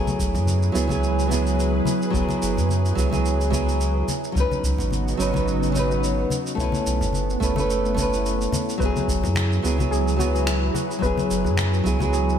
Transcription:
Already playing: nylon-string guitar F#3 B3 E4 G#4, string machine F#3 E4 G#4 B4
0.07 high conga, shaker
0.19 sub bass F#1, kick, shaker
0.34 sub bass F#2, low conga, shaker
0.47 high conga, shaker
0.62 shaker
0.72 sub bass C#2, nylon-string guitar F#3 B3 E4 G#4, shaker
0.87 nylon-string guitar F#3 B3 E4, kick, high conga, shaker
0.92 nylon-string guitar G#4
1.03 shaker
1.19 shaker
1.27 nylon-string guitar F#3 B3, high conga
1.31 nylon-string guitar E4 G#4, shaker
1.46 shaker
1.59 shaker
1.85 high conga, shaker
2.02 shaker
2.10 sub bass F#1, nylon-string guitar F#3 B3, kick, shaker
2.15 nylon-string guitar E4 G#4
2.29 high conga, shaker
2.42 sub bass F#1, shaker
2.57 sub bass F#2, low conga, shaker
2.69 high conga, shaker
2.85 shaker
2.95 sub bass C#2, nylon-string guitar F#3 B3 E4 G#4, kick, shaker
3.10 nylon-string guitar F#3 B3 E4 G#4, high conga, shaker
3.25 shaker
3.41 shaker
3.50 nylon-string guitar F#3 B3 E4, kick, high conga, shaker
3.54 nylon-string guitar G#4
3.69 shaker
3.81 shaker
4.08 string machine C#3 B3 D#4 F#4, high conga, shaker
4.24 shaker
4.32 sub bass C#2, nylon-string guitar F#3 C#4, kick
4.37 nylon-string guitar D#4 B4, shaker
4.51 high conga, shaker
4.64 sub bass C#2, kick, shaker
4.78 sub bass G#1, low conga, shaker
4.91 high conga, shaker
5.08 shaker
5.17 sub bass G#1, nylon-string guitar F#3 C#4 D#4 B4, shaker
5.33 nylon-string guitar F#3 C#4 D#4 B4, kick, high conga, shaker
5.48 shaker
5.63 shaker
5.72 nylon-string guitar F#3 C#4, high conga, shaker
5.76 nylon-string guitar D#4 B4
5.91 shaker
6.04 shaker
6.30 high conga, shaker
6.46 shaker
6.55 sub bass B1, nylon-string guitar A3 C#4, string machine A3 B3 E4, kick
6.59 nylon-string guitar E4 B4, shaker
6.72 high conga, shaker
6.86 sub bass B1, shaker
7.01 sub bass F#1, low conga, shaker
7.13 high conga, shaker
7.30 shaker
7.40 sub bass F#1, nylon-string guitar A3 C#4 E4 B4, kick, shaker
7.56 nylon-string guitar A3 C#4 E4 B4, high conga, shaker
7.70 shaker
7.85 shaker
7.94 nylon-string guitar A3 C#4, kick, high conga, shaker
7.99 nylon-string guitar E4 B4
8.13 shaker
8.26 shaker
8.41 shaker
8.52 high conga, low conga, shaker
8.69 shaker
8.78 sub bass F#1, nylon-string guitar F#3 B3, string machine F#3 G#4 B4, synth pluck B4, kick, shaker
8.83 nylon-string guitar E4 G#4
8.96 high conga, shaker
9.08 sub bass F#1, kick, shaker
9.24 sub bass F#2, low conga, shaker
9.35 finger snap, high conga, shaker
9.52 shaker
9.62 sub bass C#2, nylon-string guitar F#3 B3 E4 G#4, shaker
9.78 nylon-string guitar F#3 B3 E4 G#4, kick, high conga, shaker
9.91 synth pluck G#4, shaker
10.08 shaker
10.16 nylon-string guitar F#3 B3, synth pluck F#4, high conga, shaker
10.21 nylon-string guitar E4 G#4
10.35 shaker
10.47 synth pluck E4, finger snap, shaker
10.74 synth pluck F#4, high conga, shaker
10.91 shaker
10.99 nylon-string guitar F#3 B3, synth pluck B4, kick
11.03 sub bass F#1, nylon-string guitar E4 G#4, shaker
11.18 high conga, shaker
11.30 sub bass F#1, shaker
11.45 sub bass F#2, low conga, shaker
11.57 finger snap, high conga, shaker
11.74 shaker
11.84 sub bass C#2, nylon-string guitar F#3 B3 E4 G#4, kick, shaker
11.99 nylon-string guitar F#3 B3 E4 G#4, high conga, shaker
12.13 synth pluck G#4, shaker
12.29 shaker

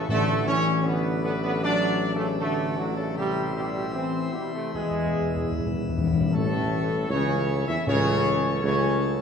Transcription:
Already playing: pipe organ E4
0.09 tuba A1, timpani A2, french horn section D3, pipe organ F#3 D4, trombone section A3, trumpet section A4
0.47 french horn section E3, trombone section C#4, trumpet section C#5
0.84 french horn section D3, trombone section B3, trumpet section B4
1.24 french horn section D3, trombone section B3, trumpet section B4
1.42 french horn section D3, trombone section B3, trumpet section B4
1.63 french horn section F#3, trombone section D4, trumpet section D5
2.14 french horn section C#3, trombone section A3, trumpet section A4
2.40 french horn section D3, trombone section A3, trumpet section A4
2.77 french horn section A2, trombone section F#3, trumpet section F#4
2.96 french horn section C#3, trombone section A3, trumpet section A4
3.14 french horn section C3, pipe organ E3 E4 C5 E5, trumpet section G4
3.18 trombone section G3
3.54 french horn section B2, trombone section G3, trumpet section G4
3.93 french horn section E3, trombone section C4, trumpet section C5
4.32 french horn section B2, trombone section G3, trumpet section G4
4.52 french horn section C3, trombone section A3, trumpet section A4
4.74 timpani E2, tuba E2, french horn section B2, trombone section G#3, pipe organ B3, trumpet section G#4
4.81 timpani E2
4.91 timpani E2
4.98 timpani E2
5.06 timpani E2
5.13 timpani E2
5.21 timpani E2
5.28 timpani E2
5.36 timpani E2
5.44 timpani E2
5.52 timpani E2
5.58 timpani E2
5.66 timpani E2
5.73 timpani E2
5.81 timpani E2
5.89 timpani E2
5.98 timpani E2
6.05 timpani E2
6.12 timpani E2
6.20 timpani E2
6.31 tuba A1, timpani A2, trombone section A2, pipe organ E3 A3 E4 C#5, french horn section A3, trumpet section A4
7.10 tuba C#2, trombone section C#3, french horn section C#4, trumpet section C#5
7.68 tuba E2, trombone section E3, french horn section E4, trumpet section E5
7.87 tuba C#2, timpani A2, trombone section C#3, pipe organ F#3 C#4 A4, french horn section C#4, trumpet section C#5
8.63 tuba C#2, trombone section C#3, french horn section C#4, trumpet section C#5

